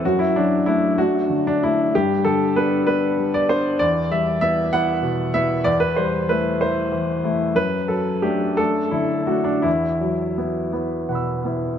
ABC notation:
X:1
M:6/8
L:1/16
Q:3/8=63
K:Em
V:1 name="Grand piano"
F E D2 E2 F3 D E2 | G2 A2 B2 B3 d c2 | d2 e2 e2 f4 e2 | d B c2 B2 c2 z4 |
B2 A2 G2 A2 E2 F D | E6 z2 [fbe']4 |]
V:2 name="Grand piano"
F,,2 F,2 [A,D]2 [A,D]2 D,2 [A,D]2 | G,,2 D,2 [B,D]2 [B,D]2 G,2 [B,D]2 | E,,2 G,2 [B,E]2 [B,E]2 B,,2 [B,E]2 | E,,2 G,2 [A,E]2 [A,E]2 E,2 [A,E]2 |
F,,2 F,2 [A,D]2 [A,D]2 D,2 [A,D]2 | E,,2 F,2 [B,E]2 [B,E]2 B,,2 [B,E]2 |]